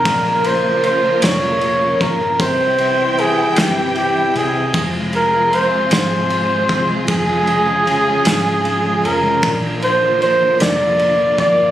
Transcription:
Already playing: steel-string acoustic guitar G#3 C4 D#4, flugelhorn A#4
0.05 fingered electric bass A#1, steel-string acoustic guitar A#2, string section C#3 F3 A#3 F4 A#4, kick, ride
0.26 steel-string acoustic guitar A#3
0.44 steel-string acoustic guitar F4, flugelhorn C5, ride
0.64 steel-string acoustic guitar A#3
0.84 steel-string acoustic guitar C#4, flugelhorn C5, ride
1.03 steel-string acoustic guitar A#3
1.22 fingered electric bass F1, steel-string acoustic guitar A#2, flugelhorn C#5, snare, ride
1.42 steel-string acoustic guitar A#3
1.61 steel-string acoustic guitar F4, ride
1.81 steel-string acoustic guitar A#3
2.01 fingered electric bass G1, steel-string acoustic guitar C#4, flugelhorn A#4, kick, ride
2.21 steel-string acoustic guitar A#3
2.38 fingered electric bass C2, string section C3 E3 E4 G5, steel-string acoustic guitar C3, flugelhorn C5, kick, ride
2.60 steel-string acoustic guitar G3
2.78 steel-string acoustic guitar E4, ride
2.98 steel-string acoustic guitar G3
3.17 steel-string acoustic guitar C4, flugelhorn G#4, ride
3.37 steel-string acoustic guitar G3
3.56 fingered electric bass G1, steel-string acoustic guitar C3, flugelhorn G4, snare, ride
3.77 steel-string acoustic guitar G3
3.96 steel-string acoustic guitar E4, flugelhorn G4, ride
4.14 steel-string acoustic guitar G3
4.34 fingered electric bass C2, steel-string acoustic guitar C4, flugelhorn G#4, ride
4.53 steel-string acoustic guitar G3
4.73 fingered electric bass F1, string section C3 F3 G#3 F4 G#4, steel-string acoustic guitar F3, kick, ride
4.93 steel-string acoustic guitar G#3
5.13 steel-string acoustic guitar F4, flugelhorn A#4, ride
5.33 steel-string acoustic guitar G#3
5.51 steel-string acoustic guitar C4, flugelhorn C5, ride
5.71 steel-string acoustic guitar G#3
5.90 fingered electric bass G#1, steel-string acoustic guitar F3, snare, ride
5.94 flugelhorn C5
6.09 steel-string acoustic guitar G#3
6.29 steel-string acoustic guitar F4, ride
6.48 steel-string acoustic guitar G#3
6.68 fingered electric bass C2, steel-string acoustic guitar C4, kick, ride
6.88 steel-string acoustic guitar G#3
7.07 fingered electric bass F1, string section C#3 F4, steel-string acoustic guitar F3, flugelhorn G#4, kick, ride
7.27 steel-string acoustic guitar G#3
7.46 steel-string acoustic guitar F4, ride
7.66 steel-string acoustic guitar G#3
7.85 steel-string acoustic guitar C#4, ride
8.05 steel-string acoustic guitar G#3
8.25 fingered electric bass G#1, steel-string acoustic guitar F3, snare, ride
8.45 steel-string acoustic guitar G#3
8.63 steel-string acoustic guitar F4, ride
8.83 steel-string acoustic guitar G#3
9.02 fingered electric bass F1, steel-string acoustic guitar C#4, ride
9.06 flugelhorn A#4
9.21 steel-string acoustic guitar G#3
9.42 fingered electric bass A#1, steel-string acoustic guitar A#2, string section D3 A#3 F4 A#4, kick, ride
9.61 steel-string acoustic guitar F3
9.80 steel-string acoustic guitar F4, flugelhorn C5, ride
10.00 steel-string acoustic guitar F3
10.19 steel-string acoustic guitar A#3, ride
10.23 flugelhorn C5
10.39 steel-string acoustic guitar F3
10.58 fingered electric bass F1, steel-string acoustic guitar A#2, flugelhorn D5, snare, ride
10.78 steel-string acoustic guitar F3
10.97 steel-string acoustic guitar F4, ride
11.18 steel-string acoustic guitar F3
11.37 fingered electric bass G1, steel-string acoustic guitar A#3, flugelhorn D5, kick, ride
11.57 steel-string acoustic guitar F3

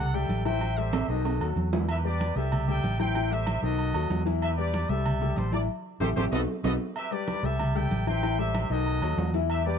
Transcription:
Already playing: fingered electric bass C2, trumpet section F#5
0.00 trumpet section A4
0.14 grand piano G3 G4 A4, trumpet section E5 G5, high conga
0.29 fingered electric bass A1, high conga, low agogo
0.45 grand piano E3 E4 E5, trumpet section C5 E5 G5, high conga, low agogo
0.61 grand piano E3 E4 E5, high conga, low agogo
0.77 grand piano G3 G4 A4, trumpet section G4 C5 E5, high conga
0.93 high conga, high timbale, low agogo
1.08 fingered electric bass B1, grand piano D#3 D#4 D#5, trumpet section F#4 A4 D#5, high conga
1.25 high conga, high timbale, low agogo
1.40 fingered electric bass D#2, grand piano F#3 F#4 A4, high conga, low agogo
1.56 fingered electric bass E2, high conga
1.73 grand piano E3 E4 E5, high conga, low timbale, low agogo
1.88 trumpet section G4 B4 E5, high conga, low agogo, maracas
2.04 grand piano G3 G4 B4, trumpet section G4 B4 D5, high conga, maracas
2.20 high conga, low agogo, maracas
2.36 fingered electric bass C2, grand piano G3 G4 A4, trumpet section G4 A4 E5, high conga, maracas
2.52 high conga, low conga, low agogo, maracas
2.68 grand piano G3 G4 A4, trumpet section E5 G5, high conga, low conga, maracas
2.83 fingered electric bass A1, high conga, low agogo, maracas
2.99 grand piano E3 E4 E5, trumpet section C5 E5 G5, high conga, low agogo, maracas
3.15 grand piano E3 E4 E5, high conga, low agogo, maracas
3.31 grand piano G3 G4 A4, trumpet section G4 C5 E5, high conga, maracas
3.46 high conga, low agogo, maracas
3.62 fingered electric bass B1, grand piano D#3 D#4 D#5, trumpet section F#4 A4 D#5, high conga, maracas
3.78 high conga, low agogo, maracas
3.94 fingered electric bass D#2, grand piano F#3 F#4 A4, high conga, low agogo, maracas
4.10 fingered electric bass E2, high conga, low timbale, maracas
4.26 grand piano E3 E4 E5, high conga, low agogo, maracas
4.42 trumpet section G4 B4 E5, high conga, low agogo, maracas
4.58 grand piano G3 G4 B4, trumpet section G4 B4 D5, high conga, maracas
4.74 high conga, low agogo, maracas
4.89 fingered electric bass C2, grand piano G3 G4 A4, trumpet section G4 A4 E5, high conga, maracas
5.05 high conga, low conga, low agogo, maracas
5.21 grand piano G3 G4 A4, high conga, low conga, maracas
5.37 fingered electric bass A1, trumpet section C5, high conga, low agogo, maracas
5.52 grand piano E3 E4 E5, trumpet section D5, high conga, low agogo, maracas
6.00 fingered electric bass A1, grand piano E4 G4 A4, trumpet section G4 A4 C5, high conga, high timbale, maracas
6.16 fingered electric bass A1, grand piano E4 G4 A4, trumpet section G4 A4 C5, high conga, high timbale, maracas
6.32 fingered electric bass B1, grand piano B3 D#4 F#4, trumpet section A4 B4 D#5, high conga, high timbale, maracas
6.64 fingered electric bass B1, grand piano B3 D#4 F#4, trumpet section A4 B4 D#5, high conga, high timbale, maracas
6.96 trumpet section G4 B4 E5, high conga, low agogo
7.11 grand piano G3 G4 B4, trumpet section G4 B4 D5, high conga
7.28 high conga, low agogo
7.43 fingered electric bass C2, grand piano G3 G4 A4, trumpet section G4 A4 E5, high conga
7.60 high conga, low conga, low agogo
7.75 grand piano G3 G4 A4, trumpet section E5 G5, high conga, low conga
7.90 fingered electric bass A1, high conga, low agogo
8.07 grand piano E3 E4 E5, trumpet section C5 E5 G5, high conga, low agogo
8.23 grand piano E3 E4 E5, high conga, low agogo
8.39 grand piano G3 G4 A4, trumpet section G4 C5 E5, high conga
8.55 high conga, low agogo
8.70 fingered electric bass B1, grand piano D#3 D#4 D#5, trumpet section F#4 A4 D#5, high conga
8.86 high conga, low agogo
9.02 fingered electric bass D#2, grand piano F#3 F#4 A4, high conga, low agogo
9.17 fingered electric bass E2, high conga, low timbale
9.34 grand piano E3 E4 E5, high conga, low agogo
9.50 trumpet section G4 B4 E5, high conga, low agogo
9.66 grand piano G3 G4 B4, trumpet section G4 B4 D5, high conga

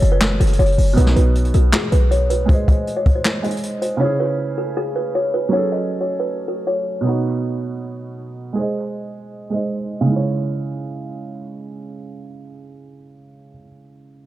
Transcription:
Already playing: felt piano F#3 C#4 G#4 A4
0.02 808-style bass F#1, closed hi-hat
0.12 kalimba B4
0.21 snare, clap
0.40 808-style bass F#1, kalimba A4, closed hi-hat
0.47 closed hi-hat
0.53 closed hi-hat
0.59 808-style bass F#1, kalimba C#5, closed hi-hat
0.66 closed hi-hat
0.72 closed hi-hat
0.78 808-style bass F#1, open hi-hat
0.93 808-style bass B1, felt piano B2 B3, kalimba B4, closed hi-hat
0.99 felt piano D#4 F#4
1.07 snare
1.16 808-style bass B1, kalimba B4, closed hi-hat
1.35 closed hi-hat
1.45 closed hi-hat
1.54 808-style bass B1, kalimba A4, closed hi-hat
1.73 kalimba G#4, snare, clap
1.92 808-style bass B1, kalimba B4, closed hi-hat
2.11 kalimba C#5, closed hi-hat
2.30 kalimba B4, closed hi-hat
2.45 felt piano G#3 G#4, kalimba C5, kick, closed hi-hat
2.50 felt piano C5 D#5
2.68 kalimba D#5, kick, closed hi-hat
2.87 closed hi-hat
2.97 kalimba C#5
3.06 kick, closed hi-hat
3.15 kalimba C5
3.25 snare, clap
3.42 felt piano G#3 G#4 C5 D#5, kalimba D#5, closed hi-hat
3.50 closed hi-hat
3.57 closed hi-hat
3.63 closed hi-hat
3.82 kalimba C5, closed hi-hat
3.97 felt piano C#3 C#4, kalimba C#5
4.02 felt piano E4 G#4
4.20 kalimba B4
4.58 kalimba A4
4.77 kalimba G#4
4.96 kalimba B4
5.15 kalimba C#5
5.34 kalimba B4
5.49 felt piano F#3 C#4
5.53 felt piano G#4 A4, kalimba C#5
5.72 kalimba D#5
6.01 kalimba C#5
6.20 kalimba B4
6.48 kalimba A4
6.67 kalimba C#5
7.01 felt piano B2 B3
7.06 felt piano D#4 F#4
8.53 felt piano G#3 G#4
8.58 felt piano C5 D#5
9.50 felt piano G#3 G#4 C5 D#5
10.01 felt piano C#3
10.06 felt piano G#3
10.11 felt piano E4
10.16 felt piano C#5

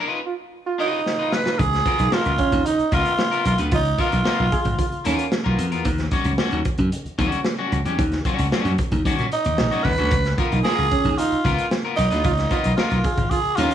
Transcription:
0.00 clean electric guitar D#4 F4 B4
0.26 trombone F4
0.66 trombone F4
0.78 clean electric guitar D#4 F4 B4, tenor saxophone D#4
1.06 snare
1.19 clean electric guitar D#4 F4 B4
1.32 tenor saxophone B4, snare
1.44 clean electric guitar D#4 F4 B4, snare
1.53 tenor saxophone B4
1.59 slap bass C#2, tenor saxophone G#4, kick, closed hi-hat
1.73 snare, closed hi-hat
1.85 clean electric guitar B3 F4 A#4, trombone F4, kick, closed hi-hat
1.99 slap bass B1, trombone D#4, closed hi-hat
2.12 clean electric guitar B3 F4 A#4, trombone F4, tenor saxophone F4, snare
2.25 slap bass C#2, closed hi-hat
2.38 trombone C#4, kick, closed hi-hat
2.52 slap bass D#2, kick, closed hi-hat
2.65 trombone D#4, tenor saxophone D#4, closed hi-hat
2.79 muted slap bass stroke, closed hi-hat
2.92 slap bass C#2, clean electric guitar B3 F4 A#4, tenor saxophone F4, kick, closed hi-hat
3.05 closed hi-hat
3.19 snare
3.31 clean electric guitar B3 F4 A#4, closed hi-hat
3.45 slap bass B1, tenor saxophone F4, closed hi-hat
3.58 slap bass D2, clean electric guitar B3 F4 B4, closed hi-hat
3.71 slap bass C#2, tenor saxophone D#4, trombone F4, kick, closed hi-hat
3.85 closed hi-hat
3.98 clean electric guitar B3 F4 A#4, trombone F4, tenor saxophone F4, kick, closed hi-hat
4.12 slap bass B1, closed hi-hat
4.25 clean electric guitar B3 F4 A#4, snare
4.40 slap bass B1
4.52 trombone G#4, kick, closed hi-hat
4.65 slap bass G#1, kick, closed hi-hat
4.78 trombone F4, kick, closed hi-hat
4.92 muted slap bass stroke, closed hi-hat
5.05 slap bass D#2, clean electric guitar B3 F4 A#4, trombone C#4, closed hi-hat
5.19 closed hi-hat
5.32 snare
5.44 slap bass B1, clean electric guitar B3 F4 A#4
5.58 slap bass F2, closed hi-hat
5.72 slap bass E2, clean electric guitar B3 F4 A#4, closed hi-hat
5.85 slap bass D#2, kick, closed hi-hat
5.98 snare, closed hi-hat
6.11 clean electric guitar G3 C#4 F#4, kick, closed hi-hat
6.24 slap bass C#2, closed hi-hat
6.38 clean electric guitar G3 C#4 F#4, snare
6.51 slap bass D#2, closed hi-hat
6.65 kick, closed hi-hat
6.78 slap bass F#2, kick, closed hi-hat
6.92 closed hi-hat
7.05 muted slap bass stroke, closed hi-hat
7.18 slap bass D#2, clean electric guitar G3 C#4 F#4, kick, closed hi-hat
7.32 closed hi-hat
7.45 snare
7.58 clean electric guitar G3 C#4 F#4
7.72 slap bass C#2, closed hi-hat
7.85 slap bass E2, clean electric guitar G3 C#4 G4, closed hi-hat
7.99 slap bass D#2, kick, closed hi-hat
8.12 snare, closed hi-hat
8.25 clean electric guitar G3 C#4 F#4, kick, closed hi-hat
8.38 slap bass C#2, closed hi-hat
8.52 clean electric guitar G3 C#4 F#4, muted slap bass stroke, snare
8.65 slap bass F#2, closed hi-hat
8.78 kick, closed hi-hat
8.92 slap bass D#2, kick, closed hi-hat
9.05 slap bass D#3, clean electric guitar G3 C#4 F#4, kick, closed hi-hat
9.19 slap bass A#2, closed hi-hat
9.32 tenor saxophone D#4, closed hi-hat
9.45 slap bass D#2, closed hi-hat
9.58 slap bass A#1, snare
9.71 clean electric guitar G3 C#4 F#4, closed hi-hat
9.84 slap bass D#2, tenor saxophone B4, kick, open hi-hat
9.98 slap bass D2, clean electric guitar G3 C#4 F#4, closed hi-hat
10.11 slap bass C#2, kick, closed hi-hat
10.25 snare, closed hi-hat
10.38 clean electric guitar B3 F4 A#4, trombone F4, kick, closed hi-hat
10.51 slap bass B1, trombone D#4, closed hi-hat
10.64 clean electric guitar B3 F4 A#4, trombone F4, tenor saxophone G#4, snare
10.78 slap bass C#2
10.91 trombone C#4, kick, closed hi-hat
11.04 slap bass D#2, kick, closed hi-hat
11.18 trombone D#4, tenor saxophone F4, closed hi-hat
11.32 muted slap bass stroke, closed hi-hat
11.44 slap bass C#2, clean electric guitar B3 F4 A#4, kick, closed hi-hat
11.58 closed hi-hat
11.71 snare
11.85 clean electric guitar B3 F4 A#4
11.96 slap bass B1, tenor saxophone D#4, closed hi-hat
12.11 slap bass D2, clean electric guitar B3 F4 B4, closed hi-hat
12.24 slap bass C#2, trombone F4, kick, closed hi-hat
12.37 snare, closed hi-hat
12.51 clean electric guitar B3 F4 A#4, trombone F4, kick, closed hi-hat
12.64 slap bass B1, closed hi-hat
12.77 clean electric guitar B3 F4 A#4, tenor saxophone F4, snare
12.91 slap bass B1, closed hi-hat
13.04 trombone G#4, kick, closed hi-hat
13.17 slap bass G#1, kick, closed hi-hat
13.30 trombone F4, tenor saxophone G#4, kick, closed hi-hat
13.44 muted slap bass stroke, closed hi-hat
13.56 slap bass D#2, clean electric guitar B3 F4 A#4, trombone C#4, tenor saxophone F4, closed hi-hat
13.71 closed hi-hat

